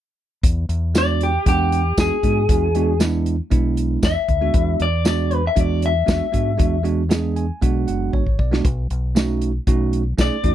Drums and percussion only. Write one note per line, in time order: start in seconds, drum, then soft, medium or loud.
0.44 kick loud
0.44 closed hi-hat medium
0.69 closed hi-hat medium
0.95 snare loud
0.95 closed hi-hat medium
0.95 tambourine loud
1.21 closed hi-hat medium
1.46 kick medium
1.46 closed hi-hat medium
1.72 closed hi-hat medium
1.98 kick medium
1.98 snare loud
1.98 closed hi-hat medium
1.98 tambourine loud
2.23 kick medium
2.23 closed hi-hat medium
2.49 kick loud
2.49 closed hi-hat medium
2.75 closed hi-hat medium
3.00 snare loud
3.00 closed hi-hat medium
3.00 tambourine loud
3.26 closed hi-hat medium
3.51 kick medium
3.51 closed hi-hat medium
3.77 closed hi-hat medium
4.03 kick medium
4.03 snare loud
4.03 closed hi-hat medium
4.03 tambourine loud
4.28 kick medium
4.28 closed hi-hat medium
4.54 kick loud
4.54 closed hi-hat medium
4.80 closed hi-hat medium
5.05 snare loud
5.05 closed hi-hat medium
5.05 tambourine loud
5.31 closed hi-hat medium
5.56 kick medium
5.56 closed hi-hat medium
5.82 closed hi-hat medium
6.08 kick medium
6.08 snare loud
6.08 closed hi-hat medium
6.08 tambourine medium
6.34 kick medium
6.34 closed hi-hat medium
6.59 kick loud
6.59 closed hi-hat medium
6.85 closed hi-hat medium
7.11 snare loud
7.11 closed hi-hat medium
7.11 tambourine loud
7.36 closed hi-hat medium
7.62 kick medium
7.62 closed hi-hat medium
7.88 closed hi-hat medium
8.13 kick medium
8.27 kick medium
8.39 kick medium
8.53 snare medium
8.65 kick loud
8.65 closed hi-hat medium
8.90 closed hi-hat medium
9.16 snare loud
9.16 closed hi-hat medium
9.16 tambourine loud
9.42 closed hi-hat medium
9.67 kick medium
9.67 closed hi-hat medium
9.93 closed hi-hat medium
10.18 kick medium
10.18 snare loud
10.18 closed hi-hat medium
10.18 tambourine loud
10.44 kick medium
10.44 closed hi-hat medium